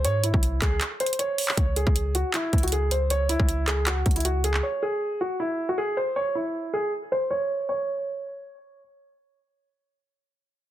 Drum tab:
HH |x-----------x-----------x-----------x-----------x-----------x---x---x---x-----------o-----------|x-----------x-----------x-----------x-----------x-----------x--x--x--x--x-----------x-----------|x-----------x-----------x-----------x-----------x-----------x--x--x--x--x-----------x-----------|------------------------------------------------------------------------------------------------|
CP |------------------------------------x-----------x-----------------------------------------x-----|------------------------------------------------x-----------------------------------------------|------------------------------------x-----------x-----------------------------------------x-----|------------------------------------------------------------------------------------------------|
BD |------------------o-----------------o-----------------------------------------------------------|o-----------------o-----------------------------------------o-----------------------------------|------------------o-----------------------------------------o-----------------------------------|------------------------------------------------------------------------------------------------|

HH |------------------------------------------------------------------------------------------------|------------------------------------------------------------------------------------------------|------------------------------------------------------------------------------------------------|
CP |------------------------------------------------------------------------------------------------|------------------------------------------------------------------------------------------------|------------------------------------------------------------------------------------------------|
BD |------------------------------------------------------------------------------------------------|------------------------------------------------------------------------------------------------|------------------------------------------------------------------------------------------------|